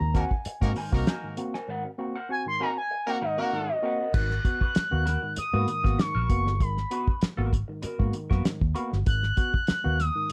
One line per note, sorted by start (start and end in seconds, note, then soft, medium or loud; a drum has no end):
0.00 0.24 D#2 medium
0.00 0.14 G#2 medium
0.00 0.14 D#3 medium
0.00 0.22 A#5 loud
0.14 0.24 A#3 medium
0.14 0.30 C4 medium
0.14 0.24 D#4 medium
0.14 0.24 F#4 medium
0.14 0.31 F#4 medium
0.14 0.24 A#4 loud
0.14 0.30 A#4 medium
0.14 0.30 C5 medium
0.14 0.31 F#5 medium
0.14 kick loud
0.14 snare soft
0.14 closed hi-hat medium
0.22 0.72 G#5 loud
0.31 muted clean electric guitar stroke soft
0.31 kick medium
0.45 muted clean electric guitar stroke soft
0.45 muted fingered electric bass stroke soft
0.45 closed hi-hat loud
0.61 0.73 G#2 loud
0.61 0.75 A#3 medium
0.61 0.71 A#3 medium
0.61 0.75 C4 medium
0.61 0.70 D#4 medium
0.61 0.71 F#4 loud
0.61 0.76 F#4 medium
0.61 0.71 A#4 loud
0.61 muted clean electric guitar stroke medium
0.61 kick medium
0.61 closed hi-hat medium
0.76 0.92 G#2 medium
0.76 0.92 D#3 medium
0.76 0.95 A#4 medium
0.76 0.93 C5 medium
0.76 0.92 G#5 medium
0.76 open hi-hat medium
0.92 1.04 C2 medium
0.92 1.06 A#3 medium
0.92 1.35 A#3 loud
0.92 1.05 C4 medium
0.92 1.35 D#4 medium
0.92 1.35 F#4 medium
0.92 1.05 F#4 medium
0.92 1.35 A#4 loud
0.92 muted clean electric guitar stroke medium
0.92 kick medium
0.92 snare soft
1.07 1.26 A#4 medium
1.07 1.27 C5 medium
1.07 1.27 G#5 loud
1.07 snare loud
1.07 closed hi-hat medium
1.23 1.37 G#2 medium
1.23 1.37 D#3 medium
1.37 1.53 A#3 medium
1.37 1.53 C4 medium
1.37 1.53 F#4 medium
1.37 muted clean electric guitar stroke soft
1.37 closed hi-hat medium
1.54 1.67 A#4 medium
1.54 1.68 C5 medium
1.54 1.68 G#5 medium
1.54 snare soft
1.68 1.84 G#2 medium
1.68 1.84 D#3 medium
1.68 1.87 A#4 medium
1.68 1.85 C5 medium
1.68 1.84 F#5 loud
1.84 1.90 C4 soft
1.84 1.90 F#4 soft
1.84 muted clean electric guitar stroke medium
1.98 2.14 A#3 medium
1.98 2.15 C4 medium
1.98 2.15 F#4 medium
1.98 muted clean electric guitar stroke soft
2.15 2.29 A#4 medium
2.15 2.29 C5 medium
2.15 2.29 F#5 medium
2.29 2.45 C4 medium
2.29 2.46 F#4 medium
2.29 2.46 G#5 loud
2.29 muted clean electric guitar stroke soft
2.46 2.60 G#2 medium
2.46 2.60 D#3 medium
2.46 2.64 C6 loud
2.60 2.71 A#3 medium
2.60 2.76 C4 medium
2.60 2.71 D#4 medium
2.60 2.76 F#4 medium
2.60 2.71 F#4 medium
2.60 2.76 A#4 medium
2.60 2.71 A#4 medium
2.60 2.76 C5 medium
2.60 2.76 G#5 medium
2.60 2.77 A#5 loud
2.77 3.10 G#5 loud
2.77 muted clean electric guitar stroke soft
2.91 muted clean electric guitar stroke soft
3.07 3.16 A#3 loud
3.07 3.21 A#3 medium
3.07 3.22 C4 medium
3.07 3.16 D#4 medium
3.07 3.16 F#4 loud
3.07 3.22 F#4 medium
3.07 3.16 A#4 loud
3.07 3.25 F#5 medium
3.07 muted clean electric guitar stroke medium
3.21 3.38 G#2 medium
3.21 3.37 D#3 medium
3.21 3.41 A#4 medium
3.21 3.38 C5 loud
3.21 3.40 D#5 medium
3.21 3.37 F#5 medium
3.37 3.52 A#3 medium
3.37 3.81 A#3 loud
3.37 3.52 C4 medium
3.37 3.81 D#4 loud
3.37 3.81 F#4 loud
3.37 3.52 F#4 medium
3.37 3.81 A#4 loud
3.37 3.70 F#5 medium
3.37 muted clean electric guitar stroke medium
3.52 3.68 G#2 medium
3.52 3.68 D#3 medium
3.52 muted clean electric guitar stroke soft
3.69 4.13 D#5 medium
3.69 muted clean electric guitar stroke medium
3.83 3.99 A#3 medium
3.83 3.98 C4 medium
3.83 3.98 F#4 medium
3.83 3.99 A#4 medium
3.83 3.99 C5 medium
3.83 3.99 F#5 medium
3.99 4.05 C4 soft
3.99 4.05 F#4 medium
3.99 4.14 A#4 medium
3.99 4.14 C5 medium
3.99 4.13 F#5 medium
4.14 4.38 G#1 loud
4.14 4.30 G#2 medium
4.14 4.30 D#3 medium
4.14 4.33 B3 medium
4.14 4.34 F#4 medium
4.14 4.34 A#4 medium
4.14 5.33 F#6 loud
4.14 kick loud
4.14 crash loud
4.31 snare soft
4.44 4.61 B3 medium
4.44 4.61 F#4 medium
4.44 muted clean electric guitar stroke soft
4.44 kick medium
4.44 closed hi-hat medium
4.61 4.74 B3 medium
4.61 4.75 F#4 soft
4.61 4.74 B4 medium
4.61 muted fingered electric bass stroke soft
4.61 kick loud
4.75 muted clean electric guitar stroke soft
4.75 muted fingered electric bass stroke medium
4.75 snare loud
4.75 closed hi-hat medium
4.91 5.16 D#2 medium
4.91 5.06 A#3 medium
4.91 5.06 B3 medium
4.91 5.06 F#4 medium
4.91 muted clean electric guitar stroke soft
5.05 5.25 B3 medium
5.05 5.23 F#4 medium
5.05 5.22 A#4 loud
5.05 snare soft
5.05 closed hi-hat medium
5.22 5.37 G#2 medium
5.22 5.37 D#3 medium
5.22 muted clean electric guitar stroke soft
5.36 6.01 D#6 loud
5.36 muted clean electric guitar stroke soft
5.36 muted fingered electric bass stroke soft
5.36 closed hi-hat loud
5.53 5.65 G#2 loud
5.53 5.68 A#3 medium
5.53 5.68 B3 medium
5.53 5.67 B3 medium
5.53 5.67 F#4 medium
5.53 5.68 F#4 medium
5.53 5.69 B4 medium
5.68 5.84 G#2 medium
5.68 5.84 D#3 medium
5.68 muted clean electric guitar stroke soft
5.68 closed hi-hat medium
5.84 5.96 G#1 medium
5.84 5.98 A#3 medium
5.84 5.98 B3 medium
5.84 5.98 F#4 medium
5.84 muted clean electric guitar stroke medium
5.84 kick medium
5.84 snare soft
5.99 6.15 G#2 medium
5.99 6.15 D#3 medium
5.99 6.64 C#6 loud
5.99 muted clean electric guitar stroke soft
5.99 snare loud
5.99 closed hi-hat medium
6.15 6.26 A#1 medium
6.15 6.29 B3 medium
6.15 6.30 F#4 medium
6.15 6.30 A#4 medium
6.30 6.46 F#1 medium
6.30 6.45 A#3 medium
6.30 6.45 B3 medium
6.30 6.45 F#4 medium
6.30 kick loud
6.30 closed hi-hat medium
6.46 6.61 G1 loud
6.46 6.52 B3 soft
6.46 6.52 F#4 medium
6.46 muted clean electric guitar stroke medium
6.46 snare soft
6.60 6.84 G#1 loud
6.60 6.76 G#2 medium
6.60 6.76 D#3 medium
6.60 7.23 B5 medium
6.60 kick loud
6.60 closed hi-hat loud
6.77 snare soft
6.91 7.07 B3 medium
6.91 7.11 B3 medium
6.91 7.07 F#4 medium
6.91 7.11 F#4 medium
6.91 7.11 B4 loud
6.91 closed hi-hat medium
7.08 muted fingered electric bass stroke soft
7.08 kick loud
7.21 muted clean electric guitar stroke soft
7.21 muted fingered electric bass stroke medium
7.21 snare loud
7.21 closed hi-hat medium
7.37 7.62 G#1 medium
7.37 7.52 A#3 medium
7.37 7.52 B3 medium
7.37 7.51 B3 medium
7.37 7.51 F#4 medium
7.37 7.52 F#4 medium
7.37 7.52 A#4 medium
7.52 muted clean electric guitar stroke soft
7.52 kick loud
7.52 closed hi-hat medium
7.68 7.83 G#2 medium
7.68 7.83 D#3 medium
7.68 muted clean electric guitar stroke soft
7.82 8.02 B3 medium
7.82 8.03 F#4 medium
7.82 8.03 A#4 medium
7.82 muted fingered electric bass stroke soft
7.82 closed hi-hat loud
7.99 8.11 G#2 loud
7.99 8.13 A#3 medium
7.99 8.14 B3 medium
7.99 8.14 F#4 medium
7.99 kick medium
8.13 8.30 G#2 medium
8.13 8.30 D#3 medium
8.13 muted clean electric guitar stroke soft
8.13 closed hi-hat medium
8.30 8.42 F#2 medium
8.30 8.45 A#3 medium
8.30 8.45 B3 medium
8.30 8.43 B3 medium
8.30 8.45 F#4 medium
8.30 8.44 F#4 medium
8.30 8.44 A#4 medium
8.30 kick loud
8.30 snare soft
8.44 8.61 G#2 medium
8.44 8.61 D#3 medium
8.44 muted clean electric guitar stroke soft
8.44 muted fingered electric bass stroke medium
8.44 snare loud
8.44 closed hi-hat loud
8.61 8.73 D#2 medium
8.61 kick loud
8.75 8.91 A#3 medium
8.75 8.91 B3 medium
8.75 8.91 F#4 medium
8.75 8.90 A#4 medium
8.75 closed hi-hat medium
8.92 9.04 G1 loud
8.92 8.98 B3 soft
8.92 8.98 F#4 medium
8.92 muted clean electric guitar stroke medium
8.92 snare soft
9.06 9.30 G#1 loud
9.06 9.22 G#2 medium
9.06 9.22 D#3 medium
9.06 10.01 F#6 loud
9.06 kick loud
9.06 closed hi-hat loud
9.23 snare soft
9.37 9.53 B3 medium
9.37 9.53 F#4 medium
9.37 kick loud
9.37 closed hi-hat medium
9.54 muted fingered electric bass stroke soft
9.54 kick loud
9.67 muted fingered electric bass stroke medium
9.67 snare loud
9.67 closed hi-hat medium
9.84 10.09 D#2 medium
9.84 9.98 A#3 medium
9.84 9.99 B3 medium
9.84 9.99 F#4 medium
10.00 10.32 D#6 loud
10.00 snare soft
10.00 closed hi-hat medium
10.15 10.30 G#2 medium
10.15 10.30 D#3 medium